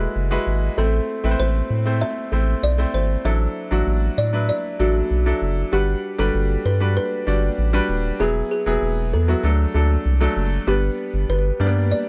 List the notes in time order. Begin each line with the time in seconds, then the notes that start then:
Already playing: G#3 E4 F#4 G#4 B4 D5
0.16 F#1
0.31 G#3 E4 F#4 B4
0.47 G#1
0.77 A1 A3 C4 E4 A4 C5
1.24 A1 A3 C4 E4 B4
1.31 C5
1.39 A1 C5
1.70 A2
1.86 A3 C4 E4 C5
2.01 E5
2.32 A1 A3 C4 E4 C5
2.63 B1 D5
2.78 A3 C4 E4 C5
2.94 G#1 C5
3.25 A1 F#3 D4 E4 A4 E5
3.71 A1 F#3 D4 E4 F#4
3.87 A1
4.18 A2 D5
4.33 F#3 D4 E4 B4
4.49 D5
4.79 A1 F#3 D4 E4 F#4 A4
5.11 B1
5.26 F#3 D4 E4 A4
5.42 F#1
5.72 G1 G3 D4 G4 B4 F#5
6.18 G1 G3 D4 F#4 A4 B4
6.34 G1
6.65 G2 B4
6.80 G3 D4 F#4 B4
6.97 B4
7.27 G1 G3 D4 F#4 D5
7.58 A1
7.73 G3 D4 F#4 B4
7.89 D#1
8.20 E1 F#3 B3 E4 G#4
8.51 G#4
8.66 E1 F#3 B3 E4 G#4
8.82 E1
9.13 E2 A4
9.28 F#3 B3 E4 F#4
9.43 D2 F#3 A3 D4 A4
9.74 D2 F#3 A3 D4 A4
10.06 C2
10.21 F#3 A3 D4 A4
10.36 F#1
10.67 G1 G3 B3 D4 G4 B4
11.14 G1
11.29 G1 B4
11.60 G2 G3 A#3 D4 D5
11.67 B3
11.92 D5